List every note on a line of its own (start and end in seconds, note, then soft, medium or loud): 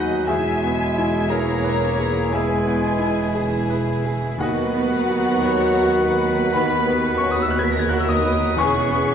0.00 0.25 B1 medium
0.00 0.29 D#2 medium
0.00 0.25 F#3 medium
0.00 0.28 F#3 medium
0.00 1.35 F#3 medium
0.00 0.31 B3 medium
0.00 0.25 D#4 medium
0.00 0.29 D#4 medium
0.00 0.31 D#4 medium
0.00 0.31 E4 soft
0.00 0.31 F#4 medium
0.00 0.28 G#4 medium
0.00 0.29 B4 medium
0.00 0.31 B4 medium
0.00 0.28 D#5 medium
0.00 0.31 D#5 medium
0.00 0.28 E5 medium
0.00 0.25 F#5 medium
0.00 0.28 F#5 medium
0.00 0.31 F#5 medium
0.00 0.27 G#5 medium
0.26 4.42 E1 medium
0.26 2.31 E2 medium
0.26 4.42 E2 medium
0.26 1.29 G#3 medium
0.26 2.31 G#3 medium
0.26 4.37 E4 medium
0.26 2.33 E4 medium
0.26 4.13 G#4 medium
0.26 1.28 G#4 medium
0.26 1.29 E5 medium
0.26 1.28 E5 medium
0.26 1.31 G#5 medium
0.26 1.27 G#5 medium
0.26 1.30 G#5 medium
0.63 1.18 B3 medium
0.98 1.53 E4 medium
1.29 2.34 A#3 medium
1.29 1.86 G#4 medium
1.29 2.31 A#4 medium
1.29 2.35 C#5 medium
1.29 2.06 A#5 medium
1.29 2.30 A#5 medium
1.29 2.35 A#5 medium
1.33 4.40 E3 medium
1.64 2.20 B4 medium
1.98 2.33 G#4 medium
2.32 2.88 B2 medium
2.32 3.89 G#3 medium
2.32 4.37 G#3 medium
2.32 4.37 E4 medium
2.32 3.33 G#4 medium
2.32 2.86 B4 medium
2.32 3.85 E5 medium
2.32 3.84 G#5 medium
2.32 3.89 G#5 medium
2.32 3.85 G#5 medium
2.66 3.23 B3 medium
2.85 4.41 G#4 medium
2.99 3.56 E4 medium
3.35 3.91 G#4 medium
3.70 4.26 B4 medium
4.05 4.40 G#4 medium
4.38 6.48 D#2 medium
4.38 8.55 D#2 medium
4.38 8.56 D#2 medium
4.38 8.28 D#3 medium
4.38 6.49 F#3 loud
4.38 6.50 B3 medium
4.38 8.27 F#4 medium
4.38 6.53 F#4 medium
4.38 8.55 B4 medium
4.38 5.43 B4 medium
4.38 6.50 D#5 medium
4.38 6.54 F#5 loud
4.38 6.50 F#5 medium
4.38 6.50 F#5 loud
4.42 5.07 F#4 medium
4.74 5.30 B3 medium
5.09 5.66 F#4 medium
5.42 6.03 B4 medium
5.42 5.98 C#5 medium
5.82 6.40 F#4 medium
5.97 7.56 B4 medium
6.18 6.52 B4 medium
6.51 7.15 B3 medium
6.51 8.56 B3 medium
6.51 8.55 F#4 medium
6.51 7.12 B4 medium
6.51 7.12 F#5 medium
6.51 7.18 B5 loud
6.51 7.12 B5 medium
6.51 7.16 B5 loud
6.56 8.56 D#2 medium
6.87 7.43 B3 medium
7.14 7.29 C#4 medium
7.14 7.29 C#6 medium
7.14 7.32 C#6 medium
7.18 7.31 C#5 medium
7.18 7.30 C#6 medium
7.24 7.78 F#4 medium
7.30 7.41 D#4 medium
7.30 7.42 D#6 medium
7.30 7.43 D#6 medium
7.30 7.41 D#6 medium
7.41 7.52 E4 medium
7.41 7.53 E6 medium
7.41 7.51 E6 medium
7.41 7.50 E6 medium
7.49 7.57 F#4 medium
7.49 7.58 F#6 medium
7.49 7.60 F#6 medium
7.54 7.65 G#4 medium
7.54 8.59 A#4 medium
7.54 8.11 B4 medium
7.54 7.60 F#6 medium
7.58 7.65 G#6 medium
7.58 7.66 G#6 medium
7.58 7.65 G#6 medium
7.64 7.72 B4 medium
7.64 7.73 B6 medium
7.64 7.72 B6 medium
7.64 7.73 B6 medium
7.71 7.79 A#4 medium
7.71 7.81 A#6 medium
7.71 7.79 A#6 medium
7.71 7.81 A#6 medium
7.79 7.88 G#4 medium
7.79 7.88 G#6 medium
7.79 7.91 G#6 medium
7.79 7.90 G#6 medium
7.89 7.98 F#4 medium
7.89 8.45 F#4 medium
7.89 7.98 F#6 medium
7.89 8.00 F#6 medium
7.98 8.09 E4 medium
7.98 8.08 E6 medium
7.98 8.09 E6 medium
8.08 8.59 D#4 loud
8.08 8.57 D#5 medium
8.08 8.56 D#6 loud
8.08 8.61 D#6 medium
8.08 8.61 D#6 loud
8.26 8.59 B4 medium
8.57 9.14 E1 medium
8.57 9.14 E2 medium
8.57 9.14 E3 medium
8.57 9.14 B3 medium
8.57 9.14 C#4 loud
8.57 9.09 G#4 medium
8.57 9.14 G#4 medium
8.57 9.14 B4 medium
8.57 9.14 C#5 medium
8.57 9.14 G#5 medium
8.57 9.14 C#6 loud
8.92 9.14 B3 medium
9.08 9.14 B4 loud